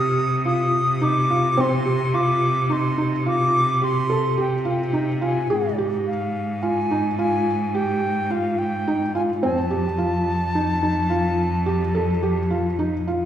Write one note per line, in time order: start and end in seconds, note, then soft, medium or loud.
0.00 5.52 C3 medium
0.00 0.19 G4 medium
0.00 0.45 D#6 medium
0.45 0.74 F4 medium
0.45 1.04 D#6 medium
1.01 1.16 D#4 medium
1.01 1.62 D6 medium
1.30 1.45 F4 medium
1.57 1.72 C4 medium
1.57 2.16 C6 medium
1.86 2.00 G4 medium
2.14 2.43 F4 medium
2.14 2.74 D6 medium
2.70 2.84 D#4 medium
2.70 3.27 C6 medium
2.98 3.12 D#4 medium
3.26 3.55 F4 medium
3.26 3.86 D6 medium
3.81 3.96 G4 medium
3.81 4.39 C6 medium
4.10 4.24 A4 medium
4.38 4.52 G4 medium
4.38 4.65 G5 medium
4.65 4.80 F4 medium
4.65 5.19 G5 medium
4.93 5.08 D#4 medium
5.21 5.36 F4 medium
5.21 5.76 G#5 medium
5.50 9.44 G#2 medium
5.50 5.65 G#4 medium
5.78 6.07 G4 medium
6.07 6.64 F5 medium
6.62 6.77 F4 medium
6.62 7.18 G#5 medium
6.91 7.05 D#4 medium
7.19 7.47 F4 medium
7.19 7.76 G#5 medium
7.75 8.03 G4 medium
7.75 8.33 G5 medium
8.30 8.59 F4 medium
8.30 8.60 F5 medium
8.59 9.15 G5 medium
8.88 9.02 D#4 medium
9.15 9.29 F4 medium
9.15 9.22 G#5 medium
9.43 13.25 F2 medium
9.43 9.57 C4 medium
9.43 12.75 A5 medium
9.71 9.85 G4 medium
9.98 10.27 F4 medium
10.55 10.69 D#4 medium
10.83 10.97 D#4 medium
11.10 11.39 F4 medium
11.66 11.81 G4 medium
11.95 12.09 A4 medium
12.23 12.37 G4 medium
12.51 12.65 F4 medium
12.79 12.93 D#4 medium
13.08 13.22 F4 medium